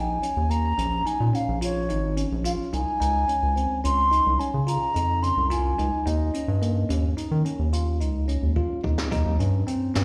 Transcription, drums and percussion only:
0.23 closed hi-hat
0.50 closed hi-hat
0.78 closed hi-hat
1.06 closed hi-hat
1.34 closed hi-hat
1.62 closed hi-hat
1.89 closed hi-hat
2.17 closed hi-hat
2.45 closed hi-hat
2.73 closed hi-hat
3.01 closed hi-hat
3.29 closed hi-hat
3.57 closed hi-hat
3.85 closed hi-hat
4.12 closed hi-hat
4.40 closed hi-hat
4.68 closed hi-hat
4.96 closed hi-hat
5.23 closed hi-hat
5.51 closed hi-hat
5.79 closed hi-hat
6.07 closed hi-hat
6.34 closed hi-hat
6.62 closed hi-hat
6.90 closed hi-hat
7.18 closed hi-hat
7.45 closed hi-hat
7.73 closed hi-hat
8.01 closed hi-hat
8.29 closed hi-hat
8.56 kick
8.84 kick
8.98 snare
9.12 kick, closed hi-hat
9.40 closed hi-hat
9.68 closed hi-hat
9.95 snare, closed hi-hat

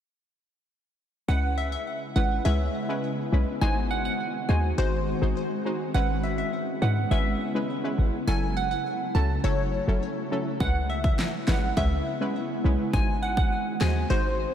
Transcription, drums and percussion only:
10.60 kick
11.04 kick
11.19 snare, clap
11.48 snare, clap
11.77 kick
12.93 kick
13.37 kick
13.81 snare, clap

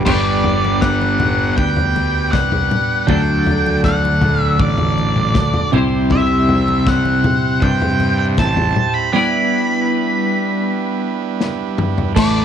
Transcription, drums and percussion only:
0.06 kick, floor tom, crash
0.44 floor tom
0.65 high conga
0.82 kick, snare, low conga
1.02 high conga
1.20 floor tom, mid tom, low conga
1.58 kick
1.77 floor tom
1.96 high conga, low conga
2.33 kick, snare, high conga
2.52 floor tom
2.71 mid tom, low conga
3.08 kick, floor tom
3.46 floor tom
3.66 high conga
3.84 kick, snare, low conga
4.05 high conga
4.21 floor tom, mid tom, low conga
4.59 kick
4.78 floor tom
4.98 high conga, low conga
5.16 mid tom
5.34 kick, snare, mid tom, high conga
5.54 floor tom
5.73 mid tom, low conga
6.10 kick, floor tom
6.49 floor tom
6.68 high conga
6.87 kick, snare, low conga
7.05 high conga
7.24 floor tom, mid tom, low conga
7.62 kick
7.82 floor tom
8.00 high conga, low conga
8.37 kick, snare, high conga
8.57 floor tom
8.76 mid tom, low conga
11.40 snare
11.78 mid tom
11.98 floor tom
12.16 kick, crash

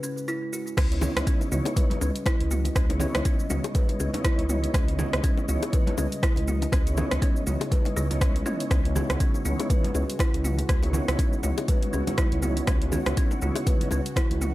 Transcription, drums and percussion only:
0.03 shaker
0.18 shaker
0.28 shaker
0.53 shaker
0.67 shaker
0.77 kick, cross-stick, closed hi-hat, crash, low bongo, shaker
0.92 closed hi-hat
1.01 high bongo, low bongo, low conga, shaker
1.17 cross-stick, closed hi-hat, high conga, shaker
1.27 kick, closed hi-hat, shaker
1.41 low bongo, shaker
1.52 mid tom, shaker
1.65 closed hi-hat, high bongo, low bongo, shaker
1.76 kick, closed hi-hat, mid tom, shaker
1.90 closed hi-hat, high conga
2.01 high bongo, low bongo, shaker
2.16 closed hi-hat, shaker
2.26 kick, cross-stick, closed hi-hat, low bongo, shaker
2.40 closed hi-hat
2.51 mid tom, shaker
2.65 closed hi-hat, low bongo, shaker
2.76 kick, cross-stick, closed hi-hat, shaker
2.90 closed hi-hat, low bongo
3.00 high bongo, low conga, shaker
3.15 cross-stick, closed hi-hat, high conga, shaker
3.25 kick, closed hi-hat, low bongo, shaker
3.39 shaker
3.50 mid tom, low bongo, high conga, shaker
3.64 closed hi-hat, high bongo, shaker
3.75 kick, closed hi-hat, high conga, shaker
3.89 closed hi-hat, low bongo
4.00 high bongo, shaker
4.13 closed hi-hat, low bongo, high conga, shaker
4.24 kick, cross-stick, closed hi-hat, shaker
4.39 closed hi-hat
4.49 mid tom, low bongo, shaker
4.64 closed hi-hat, shaker
4.74 kick, cross-stick, closed hi-hat, low bongo, shaker
4.88 closed hi-hat
4.99 high bongo, low conga, shaker
5.13 cross-stick, closed hi-hat, low bongo, high conga, shaker
5.24 kick, closed hi-hat, shaker
5.37 low bongo, shaker
5.49 mid tom, shaker
5.63 closed hi-hat, high bongo, shaker
5.73 kick, closed hi-hat, mid tom, low bongo, shaker
5.87 closed hi-hat, high conga
5.98 high bongo, low bongo, shaker
6.12 closed hi-hat, shaker
6.23 kick, cross-stick, closed hi-hat, shaker
6.36 closed hi-hat, low bongo
6.48 mid tom, shaker
6.62 closed hi-hat, low bongo, shaker
6.72 kick, cross-stick, closed hi-hat, shaker
6.87 closed hi-hat, shaker
6.97 high bongo, low bongo, low conga, shaker
7.11 cross-stick, closed hi-hat, high conga, shaker
7.22 kick, closed hi-hat, low bongo, shaker
7.36 shaker
7.47 mid tom, high conga, shaker
7.61 closed hi-hat, high bongo, low bongo, shaker
7.71 kick, closed hi-hat, high conga, shaker
7.85 closed hi-hat, low bongo
7.97 high bongo, shaker
8.11 closed hi-hat, high conga, shaker
8.21 kick, cross-stick, closed hi-hat, low bongo, shaker
8.36 closed hi-hat
8.46 mid tom, low bongo, shaker
8.60 closed hi-hat, shaker
8.71 kick, cross-stick, closed hi-hat, low bongo, shaker
8.85 closed hi-hat
8.96 high bongo, low bongo, low conga, shaker
9.09 cross-stick, closed hi-hat, high conga, shaker
9.20 kick, closed hi-hat, shaker
9.34 low bongo, shaker
9.45 mid tom, shaker
9.59 closed hi-hat, high bongo, low bongo, shaker
9.70 kick, closed hi-hat, mid tom, shaker
9.84 closed hi-hat, high conga
9.94 high bongo, low bongo, shaker
10.10 closed hi-hat, shaker
10.19 kick, cross-stick, closed hi-hat, low bongo, shaker
10.34 closed hi-hat
10.45 mid tom, shaker
10.58 closed hi-hat, low bongo, shaker
10.69 kick, cross-stick, closed hi-hat, shaker
10.83 closed hi-hat, low bongo
10.93 high bongo, low conga, shaker
11.08 cross-stick, closed hi-hat, high conga, shaker
11.19 kick, closed hi-hat, low bongo, shaker
11.33 shaker
11.43 mid tom, low bongo, shaker
11.58 closed hi-hat, high bongo, shaker
11.68 kick, closed hi-hat, high conga, shaker
11.83 closed hi-hat, low bongo
11.93 high bongo, shaker
12.07 closed hi-hat, low bongo, high conga, shaker
12.18 kick, cross-stick, closed hi-hat, shaker
12.32 closed hi-hat
12.42 mid tom, low bongo, high conga, shaker
12.57 closed hi-hat, shaker
12.67 kick, cross-stick, closed hi-hat, low bongo, shaker
12.82 closed hi-hat
12.92 high bongo, low conga, shaker
13.06 cross-stick, closed hi-hat, low bongo, high conga, shaker
13.17 kick, closed hi-hat, shaker
13.31 low bongo, shaker
13.42 mid tom, shaker
13.55 closed hi-hat, high bongo, shaker
13.66 kick, closed hi-hat, mid tom, low bongo, shaker
13.81 closed hi-hat, high conga
13.91 high bongo, low bongo, shaker
14.06 closed hi-hat, shaker
14.16 kick, cross-stick, closed hi-hat, shaker
14.31 closed hi-hat, low bongo
14.41 mid tom, shaker

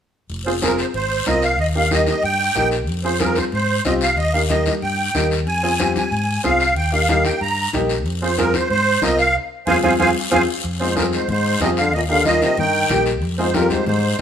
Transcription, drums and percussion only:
0.30 long guiro
0.62 high conga, short guiro
0.78 short guiro
0.94 long guiro
1.26 high conga, short guiro
1.42 short guiro
1.59 long guiro
1.91 high conga, short guiro
2.07 high conga, short guiro
2.23 long guiro
2.55 high conga, short guiro
2.71 short guiro
2.87 long guiro
3.20 high conga, short guiro
3.35 high conga, short guiro
3.52 long guiro
3.85 high conga, short guiro
4.01 short guiro
4.17 long guiro
4.50 high conga, short guiro
4.66 high conga, short guiro
4.82 long guiro
5.15 high conga, short guiro
5.31 short guiro
5.47 long guiro
5.80 high conga, short guiro
5.96 high conga, short guiro
6.12 long guiro
6.44 high conga, short guiro
6.60 short guiro
6.76 long guiro
7.09 high conga, short guiro
7.25 high conga, short guiro
7.41 long guiro
7.73 high conga, short guiro
7.89 short guiro
8.06 long guiro
8.38 high conga, short guiro
8.54 high conga, short guiro
8.70 long guiro
9.02 high conga, short guiro
9.19 short guiro
9.67 high conga, long guiro
9.83 high conga, long guiro
10.00 high conga, long guiro
10.32 high conga, long guiro
10.64 long guiro
10.97 high conga, short guiro
11.13 short guiro
11.28 low conga, long guiro
11.60 high conga, short guiro
11.77 short guiro
11.93 long guiro
12.25 high conga, short guiro
12.42 high conga, short guiro
12.58 low conga, long guiro
12.90 high conga, low conga, short guiro
13.06 short guiro
13.22 long guiro
13.54 high conga, short guiro
13.70 high conga, short guiro
13.86 low conga, long guiro

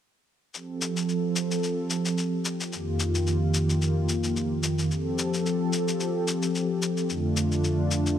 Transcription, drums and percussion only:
0.54 shaker
0.82 shaker
0.96 shaker
1.09 shaker
1.36 shaker
1.51 shaker
1.63 shaker
1.90 shaker
2.05 shaker
2.18 shaker
2.45 shaker
2.60 shaker
2.73 shaker
3.00 shaker
3.15 shaker
3.27 shaker
3.54 shaker
3.69 shaker
3.82 shaker
4.09 shaker
4.24 shaker
4.36 shaker
4.63 shaker
4.78 shaker
4.91 shaker
5.18 shaker
5.34 shaker
5.46 shaker
5.73 shaker
5.88 shaker
6.00 shaker
6.28 shaker
6.42 shaker
6.55 shaker
6.82 shaker
6.97 shaker
7.09 shaker
7.37 shaker
7.52 shaker
7.64 shaker
7.91 shaker
8.06 shaker

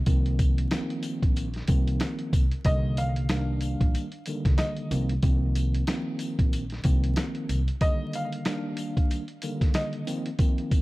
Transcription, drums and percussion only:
0.06 kick, closed hi-hat, sleigh bells
0.26 closed hi-hat
0.39 kick, closed hi-hat, sleigh bells
0.58 closed hi-hat
0.71 snare, closed hi-hat, sleigh bells
0.90 closed hi-hat
1.03 closed hi-hat, sleigh bells
1.23 kick, closed hi-hat
1.36 closed hi-hat, sleigh bells
1.54 snare, closed hi-hat
1.68 kick, closed hi-hat, sleigh bells
1.88 closed hi-hat
2.00 snare, closed hi-hat, sleigh bells
2.19 closed hi-hat
2.33 kick, closed hi-hat, sleigh bells
2.51 closed hi-hat
2.65 kick, closed hi-hat, sleigh bells
2.97 closed hi-hat, sleigh bells
3.16 closed hi-hat
3.29 snare, closed hi-hat, sleigh bells
3.61 closed hi-hat, sleigh bells
3.81 kick, closed hi-hat
3.94 closed hi-hat, sleigh bells
4.12 closed hi-hat
4.26 closed hi-hat, sleigh bells
4.45 kick, snare, closed hi-hat
4.58 snare, closed hi-hat, sleigh bells
4.77 closed hi-hat
4.91 closed hi-hat, sleigh bells
5.09 closed hi-hat
5.23 kick, closed hi-hat, sleigh bells
5.55 closed hi-hat, sleigh bells
5.74 closed hi-hat
5.87 snare, closed hi-hat, sleigh bells
6.19 closed hi-hat, sleigh bells
6.39 kick, closed hi-hat
6.53 closed hi-hat, sleigh bells
6.70 snare, closed hi-hat
6.84 kick, closed hi-hat, sleigh bells
7.04 closed hi-hat
7.16 snare, closed hi-hat, sleigh bells
7.35 closed hi-hat
7.49 closed hi-hat, sleigh bells
7.68 closed hi-hat
7.81 kick, closed hi-hat, sleigh bells
8.13 closed hi-hat, sleigh bells
8.32 closed hi-hat
8.45 snare, closed hi-hat, sleigh bells
8.77 closed hi-hat, sleigh bells
8.97 kick, closed hi-hat
9.11 closed hi-hat, sleigh bells
9.28 closed hi-hat
9.42 closed hi-hat, sleigh bells
9.61 kick, snare, closed hi-hat
9.74 snare, closed hi-hat, sleigh bells
9.93 closed hi-hat
10.07 closed hi-hat, sleigh bells
10.26 closed hi-hat
10.39 kick, closed hi-hat, sleigh bells
10.58 closed hi-hat
10.71 kick, closed hi-hat, sleigh bells

